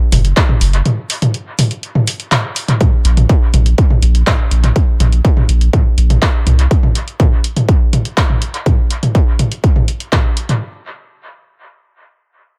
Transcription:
0.12 0.33 F#1 loud
0.12 open hi-hat loud
0.12 mid tom medium
0.25 closed hi-hat soft
0.37 kick loud
0.37 clap loud
0.37 closed hi-hat soft
0.49 mid tom loud
0.61 0.81 F#1 medium
0.61 open hi-hat loud
0.73 closed hi-hat soft
0.86 closed hi-hat soft
0.86 mid tom medium
1.10 open hi-hat loud
1.22 closed hi-hat soft
1.22 mid tom medium
1.34 closed hi-hat soft
1.59 open hi-hat loud
1.59 mid tom medium
1.71 closed hi-hat soft
1.83 closed hi-hat soft
1.95 mid tom medium
2.07 open hi-hat loud
2.20 closed hi-hat soft
2.32 clap loud
2.32 closed hi-hat soft
2.32 mid tom medium
2.56 open hi-hat loud
2.68 closed hi-hat soft
2.68 mid tom medium
2.81 kick loud
2.81 closed hi-hat soft
2.81 mid tom medium
3.05 3.25 A#1 loud
3.05 closed hi-hat medium
3.17 closed hi-hat soft
3.17 mid tom medium
3.29 kick loud
3.29 closed hi-hat soft
3.54 3.74 A#1 medium
3.54 closed hi-hat medium
3.54 mid tom medium
3.66 closed hi-hat soft
3.78 kick loud
3.78 closed hi-hat soft
3.90 mid tom medium
4.02 4.23 A#1 loud
4.02 closed hi-hat medium
4.15 closed hi-hat soft
4.27 kick loud
4.27 clap loud
4.27 closed hi-hat soft
4.27 mid tom medium
4.51 4.72 A#1 medium
4.51 closed hi-hat medium
4.64 closed hi-hat soft
4.64 mid tom medium
4.76 kick loud
4.76 closed hi-hat soft
5.00 5.21 A#1 medium
5.00 closed hi-hat medium
5.00 mid tom medium
5.12 closed hi-hat soft
5.25 kick loud
5.25 closed hi-hat soft
5.37 mid tom medium
5.49 5.69 A#1 medium
5.49 closed hi-hat medium
5.61 closed hi-hat soft
5.73 kick loud
5.73 closed hi-hat soft
5.73 mid tom medium
5.98 6.18 A#1 medium
5.98 closed hi-hat medium
6.10 closed hi-hat soft
6.10 mid tom medium
6.22 kick loud
6.22 clap loud
6.22 closed hi-hat soft
6.46 6.67 C2 medium
6.46 closed hi-hat medium
6.46 mid tom medium
6.59 closed hi-hat soft
6.71 kick loud
6.71 closed hi-hat soft
6.83 mid tom medium
6.95 closed hi-hat medium
7.08 closed hi-hat soft
7.20 kick loud
7.20 closed hi-hat soft
7.20 mid tom medium
7.44 closed hi-hat medium
7.57 closed hi-hat soft
7.57 mid tom medium
7.69 kick loud
7.69 closed hi-hat soft
7.93 closed hi-hat medium
7.93 mid tom medium
8.05 closed hi-hat soft
8.17 kick loud
8.17 clap loud
8.17 closed hi-hat soft
8.30 mid tom medium
8.42 closed hi-hat medium
8.54 closed hi-hat soft
8.66 kick loud
8.66 closed hi-hat soft
8.66 mid tom medium
8.90 closed hi-hat medium
9.03 closed hi-hat soft
9.03 mid tom medium
9.15 kick loud
9.15 closed hi-hat soft
9.39 closed hi-hat medium
9.39 mid tom medium
9.52 closed hi-hat soft
9.64 kick loud
9.64 closed hi-hat soft
9.76 mid tom medium
9.88 closed hi-hat medium
10.00 closed hi-hat soft
10.12 kick loud
10.12 clap loud
10.12 closed hi-hat soft
10.12 mid tom medium
10.37 closed hi-hat medium
10.49 closed hi-hat soft
10.49 mid tom medium

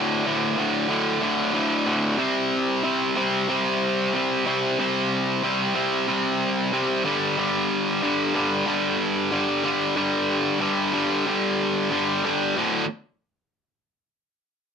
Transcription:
0.00 0.24 D2 medium
0.00 0.24 A2 medium
0.00 0.26 D3 medium
0.25 0.56 D2 loud
0.25 0.56 A2 loud
0.25 0.57 D3 loud
0.57 0.88 D2 medium
0.57 0.88 A2 medium
0.57 0.89 D3 loud
0.89 1.20 D2 medium
0.89 1.21 A2 loud
0.89 1.22 D3 loud
1.21 1.52 D2 medium
1.21 1.53 A2 medium
1.21 1.54 D3 loud
1.53 1.85 D2 loud
1.53 1.85 A2 loud
1.53 1.86 D3 loud
1.86 2.17 D2 medium
1.86 2.17 A2 medium
1.86 2.17 D3 loud
2.18 2.83 C3 medium
2.18 2.83 G3 medium
2.18 2.84 C4 loud
2.84 3.15 C3 medium
2.84 3.16 G3 medium
2.84 3.16 C4 medium
3.16 3.48 C3 medium
3.16 3.49 G3 medium
3.16 3.49 C4 medium
3.49 4.13 C3 medium
3.49 4.14 G3 loud
3.49 4.14 C4 loud
4.14 4.45 C3 medium
4.14 4.46 G3 medium
4.14 4.46 C4 medium
4.46 4.78 C3 medium
4.46 4.79 G3 medium
4.46 4.79 C4 medium
4.79 5.42 C3 loud
4.79 5.44 G3 medium
4.79 5.43 C4 loud
5.43 5.74 C3 medium
5.43 5.75 G3 medium
5.43 5.75 C4 medium
5.75 6.06 C3 medium
5.75 6.08 G3 medium
5.75 6.08 C4 medium
6.07 6.71 C3 medium
6.07 6.72 G3 medium
6.07 6.72 C4 medium
6.72 7.03 C3 medium
6.72 7.05 G3 medium
6.72 7.03 C4 medium
7.05 7.37 G2 medium
7.05 7.37 D3 medium
7.05 7.38 G3 loud
7.38 8.01 G2 medium
7.38 8.02 D3 medium
7.38 8.03 G3 loud
8.02 8.34 G2 medium
8.02 8.34 D3 medium
8.02 8.35 G3 medium
8.35 8.65 G2 medium
8.35 8.66 D3 medium
8.35 8.66 G3 medium
8.66 9.30 G2 medium
8.66 9.31 D3 medium
8.66 9.31 G3 loud
9.31 9.63 G2 medium
9.31 9.63 D3 medium
9.31 9.64 G3 medium
9.64 9.95 G2 medium
9.64 9.95 D3 medium
9.64 9.96 G3 medium
9.96 10.59 G2 medium
9.96 10.60 D3 medium
9.96 10.61 G3 loud
10.60 10.92 G2 medium
10.60 10.92 D3 medium
10.60 10.93 G3 medium
10.93 11.25 G2 medium
10.93 11.26 D3 medium
10.93 11.27 G3 medium
11.26 11.89 G2 medium
11.26 11.90 D3 medium
11.26 11.91 G3 medium
11.91 12.22 G2 medium
11.91 12.23 D3 medium
11.91 12.24 G3 medium
12.23 12.55 G2 medium
12.23 12.55 D3 medium
12.23 12.55 G3 medium
12.56 12.83 D2 medium
12.56 12.83 A2 medium
12.56 12.83 D3 medium

